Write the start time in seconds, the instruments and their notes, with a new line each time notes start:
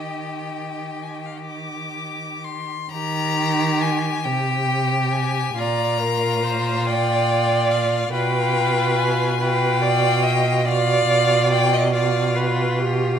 Already playing: cello D#3, violin G4 G5, viola D#5
1.02 violin G#5
1.14 violin G5
1.26 violin F5
1.37 violin G5
1.45 violin D6
2.44 violin C6
2.91 cello D#3, violin G4 A#5
3.81 violin G#5
4.24 cello C3, violin G4 G5
5.12 violin G#5
5.55 cello A#2, violin F4 A#5, viola D5
6.00 viola A#4
6.43 viola C5
6.86 viola D5, violin G5
7.71 violin F5
8.11 cello B2, violin F4 G5, viola B4
8.98 violin G#5
9.39 violin F4 G5, viola B4
9.82 viola D5
10.23 viola D#5
10.65 violin F4 F5, viola D5
11.52 violin G5
11.73 violin D#5
11.93 violin F4 F5, viola D5
12.35 viola B4
12.78 viola G4